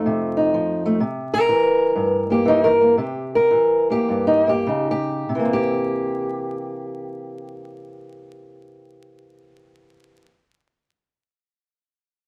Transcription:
0, 0, Header, 1, 2, 480
1, 0, Start_track
1, 0, Tempo, 486618
1, 976, Time_signature, 4, 2, 24, 8
1, 2429, Tempo, 540054
1, 3869, Tempo, 615385
1, 4829, Tempo, 658617
1, 9903, End_track
2, 0, Start_track
2, 0, Title_t, "Steel-string acoustic guitar"
2, 0, Program_c, 0, 25
2, 0, Note_on_c, 0, 41, 71
2, 0, Note_on_c, 0, 53, 59
2, 0, Note_on_c, 0, 57, 59
2, 0, Note_on_c, 0, 63, 55
2, 0, Note_on_c, 0, 65, 61
2, 57, Note_on_c, 0, 48, 64
2, 343, Note_off_c, 0, 63, 0
2, 363, Note_on_c, 0, 63, 59
2, 501, Note_off_c, 0, 53, 0
2, 516, Note_off_c, 0, 48, 0
2, 532, Note_on_c, 0, 53, 63
2, 820, Note_off_c, 0, 57, 0
2, 844, Note_on_c, 0, 57, 55
2, 951, Note_off_c, 0, 41, 0
2, 955, Note_off_c, 0, 65, 0
2, 968, Note_off_c, 0, 63, 0
2, 971, Note_off_c, 0, 53, 0
2, 972, Note_off_c, 0, 57, 0
2, 989, Note_on_c, 0, 48, 69
2, 1318, Note_on_c, 0, 70, 100
2, 1458, Note_off_c, 0, 48, 0
2, 1467, Note_on_c, 0, 52, 59
2, 1928, Note_on_c, 0, 43, 62
2, 2271, Note_on_c, 0, 58, 48
2, 2276, Note_off_c, 0, 70, 0
2, 2284, Note_on_c, 0, 67, 80
2, 2408, Note_off_c, 0, 52, 0
2, 2419, Note_on_c, 0, 52, 64
2, 2443, Note_on_c, 0, 63, 89
2, 2583, Note_off_c, 0, 67, 0
2, 2586, Note_on_c, 0, 70, 94
2, 2587, Note_off_c, 0, 63, 0
2, 2730, Note_off_c, 0, 58, 0
2, 2740, Note_on_c, 0, 58, 48
2, 2866, Note_off_c, 0, 52, 0
2, 2867, Note_off_c, 0, 43, 0
2, 2876, Note_off_c, 0, 58, 0
2, 2884, Note_on_c, 0, 48, 69
2, 2892, Note_off_c, 0, 70, 0
2, 2896, Note_on_c, 0, 67, 47
2, 3209, Note_off_c, 0, 67, 0
2, 3220, Note_on_c, 0, 70, 82
2, 3357, Note_on_c, 0, 52, 57
2, 3365, Note_off_c, 0, 48, 0
2, 3706, Note_off_c, 0, 70, 0
2, 3707, Note_on_c, 0, 58, 44
2, 3721, Note_on_c, 0, 67, 86
2, 3872, Note_on_c, 0, 43, 56
2, 4015, Note_on_c, 0, 63, 76
2, 4159, Note_off_c, 0, 58, 0
2, 4168, Note_on_c, 0, 58, 48
2, 4173, Note_off_c, 0, 63, 0
2, 4179, Note_off_c, 0, 67, 0
2, 4188, Note_on_c, 0, 67, 78
2, 4309, Note_off_c, 0, 52, 0
2, 4313, Note_off_c, 0, 58, 0
2, 4315, Note_off_c, 0, 43, 0
2, 4324, Note_on_c, 0, 49, 62
2, 4339, Note_on_c, 0, 63, 45
2, 4501, Note_off_c, 0, 67, 0
2, 4514, Note_on_c, 0, 67, 91
2, 4803, Note_off_c, 0, 49, 0
2, 4810, Note_off_c, 0, 63, 0
2, 4811, Note_on_c, 0, 48, 61
2, 4838, Note_off_c, 0, 67, 0
2, 4856, Note_on_c, 0, 52, 55
2, 4887, Note_on_c, 0, 58, 53
2, 4929, Note_on_c, 0, 60, 51
2, 4988, Note_on_c, 0, 67, 89
2, 8377, Note_off_c, 0, 48, 0
2, 8420, Note_off_c, 0, 52, 0
2, 8452, Note_off_c, 0, 58, 0
2, 8494, Note_off_c, 0, 60, 0
2, 8524, Note_off_c, 0, 67, 0
2, 9903, End_track
0, 0, End_of_file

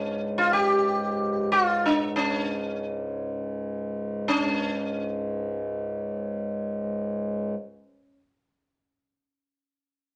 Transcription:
0, 0, Header, 1, 3, 480
1, 0, Start_track
1, 0, Key_signature, -5, "major"
1, 0, Tempo, 500000
1, 9750, End_track
2, 0, Start_track
2, 0, Title_t, "Sitar"
2, 0, Program_c, 0, 104
2, 0, Note_on_c, 0, 61, 76
2, 365, Note_on_c, 0, 65, 89
2, 377, Note_off_c, 0, 61, 0
2, 492, Note_off_c, 0, 65, 0
2, 509, Note_on_c, 0, 67, 101
2, 1453, Note_off_c, 0, 67, 0
2, 1457, Note_on_c, 0, 65, 86
2, 1782, Note_on_c, 0, 62, 77
2, 1794, Note_off_c, 0, 65, 0
2, 2069, Note_off_c, 0, 62, 0
2, 2073, Note_on_c, 0, 61, 70
2, 3266, Note_off_c, 0, 61, 0
2, 4110, Note_on_c, 0, 61, 81
2, 7861, Note_off_c, 0, 61, 0
2, 9750, End_track
3, 0, Start_track
3, 0, Title_t, "Harmonium"
3, 0, Program_c, 1, 20
3, 0, Note_on_c, 1, 37, 62
3, 0, Note_on_c, 1, 44, 63
3, 4115, Note_off_c, 1, 44, 0
3, 4116, Note_off_c, 1, 37, 0
3, 4130, Note_on_c, 1, 37, 63
3, 4130, Note_on_c, 1, 44, 62
3, 7245, Note_off_c, 1, 44, 0
3, 7246, Note_off_c, 1, 37, 0
3, 9750, End_track
0, 0, End_of_file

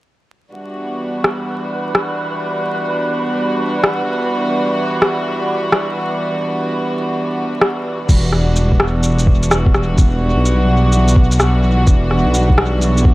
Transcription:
0, 0, Header, 1, 5, 480
1, 0, Start_track
1, 0, Key_signature, 1, "minor"
1, 0, Tempo, 472441
1, 538, Time_signature, 4, 2, 24, 8
1, 13351, End_track
2, 0, Start_track
2, 0, Title_t, "Synth texture"
2, 0, Program_c, 0, 99
2, 545, Note_on_c, 0, 71, 77
2, 8234, Note_off_c, 0, 71, 0
2, 13351, End_track
3, 0, Start_track
3, 0, Title_t, "String section"
3, 0, Program_c, 1, 48
3, 536, Note_on_c, 1, 55, 67
3, 537, Note_on_c, 1, 66, 79
3, 540, Note_on_c, 1, 52, 69
3, 540, Note_on_c, 1, 59, 65
3, 540, Note_on_c, 1, 62, 64
3, 8176, Note_off_c, 1, 55, 0
3, 8177, Note_off_c, 1, 66, 0
3, 8178, Note_off_c, 1, 52, 0
3, 8178, Note_off_c, 1, 59, 0
3, 8178, Note_off_c, 1, 62, 0
3, 8209, Note_on_c, 1, 59, 70
3, 8212, Note_on_c, 1, 52, 76
3, 8214, Note_on_c, 1, 66, 82
3, 8215, Note_on_c, 1, 55, 69
3, 8216, Note_on_c, 1, 62, 70
3, 13351, Note_off_c, 1, 52, 0
3, 13351, Note_off_c, 1, 55, 0
3, 13351, Note_off_c, 1, 59, 0
3, 13351, Note_off_c, 1, 62, 0
3, 13351, Note_off_c, 1, 66, 0
3, 13351, End_track
4, 0, Start_track
4, 0, Title_t, "Detuned saw bass"
4, 0, Program_c, 2, 39
4, 8218, Note_on_c, 2, 28, 101
4, 10128, Note_off_c, 2, 28, 0
4, 10140, Note_on_c, 2, 28, 101
4, 10517, Note_off_c, 2, 28, 0
4, 10531, Note_on_c, 2, 35, 84
4, 12045, Note_off_c, 2, 35, 0
4, 12061, Note_on_c, 2, 28, 100
4, 12438, Note_off_c, 2, 28, 0
4, 12452, Note_on_c, 2, 35, 87
4, 13351, Note_off_c, 2, 35, 0
4, 13351, End_track
5, 0, Start_track
5, 0, Title_t, "Drums"
5, 1262, Note_on_c, 9, 37, 91
5, 1363, Note_off_c, 9, 37, 0
5, 1979, Note_on_c, 9, 37, 92
5, 2081, Note_off_c, 9, 37, 0
5, 3898, Note_on_c, 9, 37, 98
5, 3999, Note_off_c, 9, 37, 0
5, 5098, Note_on_c, 9, 37, 101
5, 5200, Note_off_c, 9, 37, 0
5, 5816, Note_on_c, 9, 37, 103
5, 5918, Note_off_c, 9, 37, 0
5, 7737, Note_on_c, 9, 37, 103
5, 7838, Note_off_c, 9, 37, 0
5, 8218, Note_on_c, 9, 36, 109
5, 8220, Note_on_c, 9, 49, 90
5, 8220, Note_on_c, 9, 82, 54
5, 8320, Note_off_c, 9, 36, 0
5, 8322, Note_off_c, 9, 49, 0
5, 8322, Note_off_c, 9, 82, 0
5, 8458, Note_on_c, 9, 37, 35
5, 8559, Note_off_c, 9, 37, 0
5, 8697, Note_on_c, 9, 82, 56
5, 8799, Note_off_c, 9, 82, 0
5, 8858, Note_on_c, 9, 36, 58
5, 8938, Note_on_c, 9, 37, 99
5, 8959, Note_off_c, 9, 36, 0
5, 9040, Note_off_c, 9, 37, 0
5, 9179, Note_on_c, 9, 82, 54
5, 9280, Note_off_c, 9, 82, 0
5, 9336, Note_on_c, 9, 82, 54
5, 9420, Note_on_c, 9, 36, 95
5, 9438, Note_off_c, 9, 82, 0
5, 9522, Note_off_c, 9, 36, 0
5, 9580, Note_on_c, 9, 82, 53
5, 9665, Note_off_c, 9, 82, 0
5, 9665, Note_on_c, 9, 37, 100
5, 9665, Note_on_c, 9, 82, 53
5, 9767, Note_off_c, 9, 37, 0
5, 9767, Note_off_c, 9, 82, 0
5, 9819, Note_on_c, 9, 36, 100
5, 9901, Note_on_c, 9, 37, 65
5, 9921, Note_off_c, 9, 36, 0
5, 10002, Note_off_c, 9, 37, 0
5, 10139, Note_on_c, 9, 82, 54
5, 10142, Note_on_c, 9, 36, 115
5, 10241, Note_off_c, 9, 82, 0
5, 10243, Note_off_c, 9, 36, 0
5, 10622, Note_on_c, 9, 82, 56
5, 10724, Note_off_c, 9, 82, 0
5, 11099, Note_on_c, 9, 82, 55
5, 11201, Note_off_c, 9, 82, 0
5, 11259, Note_on_c, 9, 82, 56
5, 11342, Note_on_c, 9, 36, 100
5, 11361, Note_off_c, 9, 82, 0
5, 11444, Note_off_c, 9, 36, 0
5, 11498, Note_on_c, 9, 82, 53
5, 11580, Note_off_c, 9, 82, 0
5, 11580, Note_on_c, 9, 37, 102
5, 11580, Note_on_c, 9, 82, 55
5, 11681, Note_off_c, 9, 37, 0
5, 11681, Note_off_c, 9, 82, 0
5, 12060, Note_on_c, 9, 82, 53
5, 12062, Note_on_c, 9, 36, 118
5, 12162, Note_off_c, 9, 82, 0
5, 12163, Note_off_c, 9, 36, 0
5, 12301, Note_on_c, 9, 37, 34
5, 12403, Note_off_c, 9, 37, 0
5, 12542, Note_on_c, 9, 82, 54
5, 12643, Note_off_c, 9, 82, 0
5, 12700, Note_on_c, 9, 36, 61
5, 12780, Note_on_c, 9, 37, 101
5, 12801, Note_off_c, 9, 36, 0
5, 12881, Note_off_c, 9, 37, 0
5, 13023, Note_on_c, 9, 82, 53
5, 13125, Note_off_c, 9, 82, 0
5, 13183, Note_on_c, 9, 82, 54
5, 13260, Note_on_c, 9, 36, 105
5, 13285, Note_off_c, 9, 82, 0
5, 13351, Note_off_c, 9, 36, 0
5, 13351, End_track
0, 0, End_of_file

